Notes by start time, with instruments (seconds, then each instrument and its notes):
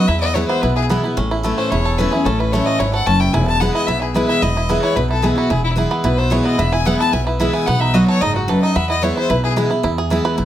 0.07 steel-string acoustic guitar E2, upright bass E2, five-string banjo E4, fiddle E5
0.20 five-string banjo B3, fiddle D#5
0.34 steel-string acoustic guitar E3 G#3 B3 E4, five-string banjo E4, fiddle C#5
0.48 five-string banjo B3, fiddle C5
0.62 upright bass B1, steel-string acoustic guitar B2, five-string banjo E4, fiddle B4
0.75 five-string banjo E4, fiddle G#4
0.89 steel-string acoustic guitar E3 G#3 B3 E4, five-string banjo B3
1.03 steel-string acoustic guitar B3 E4, five-string banjo E4
1.17 upright bass A1, steel-string acoustic guitar A2, five-string banjo C#4
1.31 five-string banjo E4
1.43 steel-string acoustic guitar E3 A3 C#4 E4, five-string banjo A3
1.57 five-string banjo C#4, fiddle C5
1.70 upright bass E1, steel-string acoustic guitar E2, five-string banjo E4, fiddle C#5
1.85 five-string banjo A4
1.98 steel-string acoustic guitar E3 A3 C#4 E4, five-string banjo C#4, fiddle B4
2.11 steel-string acoustic guitar C#4 E4, five-string banjo E4, fiddle G#4
2.25 upright bass A1, steel-string acoustic guitar A2, five-string banjo C#4, fiddle A4
2.39 five-string banjo E4, fiddle B4
2.52 steel-string acoustic guitar E3 A3 C#4 E4, five-string banjo A3, fiddle C#5
2.66 five-string banjo C#4, fiddle D#5
2.79 upright bass G#1, steel-string acoustic guitar G#2, five-string banjo E4, fiddle C#5
2.93 five-string banjo A4, fiddle F#5
3.06 upright bass F#1, steel-string acoustic guitar F#2, five-string banjo C#4, fiddle A5
3.20 five-string banjo E4, fiddle G5
3.33 upright bass E1, steel-string acoustic guitar E2, five-string banjo E4, fiddle G#5
3.47 fiddle A5
3.60 steel-string acoustic guitar E3 G#3 B3 E4, five-string banjo B3, fiddle F#5
3.74 five-string banjo E4, fiddle D#5
3.87 upright bass B1, steel-string acoustic guitar B2, five-string banjo E4, fiddle E5
4.01 five-string banjo E4, fiddle G#4
4.14 steel-string acoustic guitar E3 G#3 B3 E4, five-string banjo E4, fiddle B4
4.28 five-string banjo E4, fiddle E5
4.42 upright bass E1, steel-string acoustic guitar E2, five-string banjo E4, fiddle D#5
4.57 five-string banjo E4
4.69 steel-string acoustic guitar E3 G#3 B3 E4, five-string banjo B3
4.82 five-string banjo E4, fiddle C#5
4.96 upright bass B1, steel-string acoustic guitar B2, five-string banjo E4, fiddle B4
5.10 five-string banjo E4, fiddle A4
5.22 steel-string acoustic guitar E3 G#3 B3 E4, five-string banjo E4, fiddle G#4
5.36 steel-string acoustic guitar B3 E4, five-string banjo E4, fiddle F#4
5.50 upright bass E1, steel-string acoustic guitar E2, five-string banjo E4, fiddle G#4
5.64 fiddle E4
5.76 steel-string acoustic guitar E3 G#3 B3 E4, five-string banjo E4
5.91 five-string banjo B3
6.04 upright bass B1, steel-string acoustic guitar B2, five-string banjo E4, fiddle B4
6.18 five-string banjo B3, fiddle C5
6.30 steel-string acoustic guitar E3 G#3 B3 E4, five-string banjo E4, fiddle C#5
6.45 five-string banjo B3, fiddle D#5
6.58 upright bass E1, steel-string acoustic guitar E2, five-string banjo E4, fiddle E5
6.73 five-string banjo E4, fiddle G#5
6.85 steel-string acoustic guitar E3 G#3 B3 E4, five-string banjo B3, fiddle F#5
6.99 five-string banjo E4, fiddle A5
7.13 upright bass B1, steel-string acoustic guitar B2, five-string banjo E4, fiddle G#5
7.26 five-string banjo E4, fiddle B4
7.39 steel-string acoustic guitar E3 G#3 B3 E4, five-string banjo E4, fiddle E5
7.53 five-string banjo E4, fiddle G#5
7.66 upright bass B1, steel-string acoustic guitar B2, five-string banjo B3, fiddle F#5
7.80 five-string banjo D#4, fiddle E5
7.94 steel-string acoustic guitar F#3 B3 D#4 F#4, five-string banjo F#4, fiddle D#5
8.08 five-string banjo A4, fiddle C#5
8.21 upright bass F#1, steel-string acoustic guitar G#2, five-string banjo D#4, fiddle D#5
8.35 fiddle F#4, five-string banjo F#4
8.48 steel-string acoustic guitar F#2, five-string banjo A4, fiddle B4
8.62 five-string banjo D#4, fiddle D#5
8.76 upright bass E2, steel-string acoustic guitar E2, five-string banjo B3, fiddle E5
8.90 five-string banjo E4, fiddle D#5
9.02 steel-string acoustic guitar E3 G#3 B3 E4, five-string banjo E4, fiddle C#5
9.17 five-string banjo E4, fiddle C5
9.29 upright bass B1, steel-string acoustic guitar B2, five-string banjo E4, fiddle B4
9.44 five-string banjo E4, fiddle G#4
9.56 steel-string acoustic guitar E3 G#3 B3 E4, five-string banjo E4
9.70 steel-string acoustic guitar B3 E4, five-string banjo E4
9.83 steel-string acoustic guitar E2, upright bass E2, five-string banjo E4
9.98 five-string banjo G#4
10.10 steel-string acoustic guitar E3 G#3 B3 E4, five-string banjo E4
10.25 five-string banjo B4
10.38 upright bass B1, steel-string acoustic guitar B2, five-string banjo E4